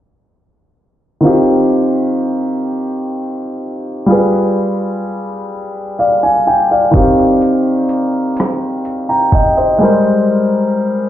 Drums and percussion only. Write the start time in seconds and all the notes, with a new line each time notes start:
6.94 kick, closed hi-hat
7.42 closed hi-hat
7.89 closed hi-hat
8.37 cross-stick, closed hi-hat
8.85 closed hi-hat
9.32 kick, closed hi-hat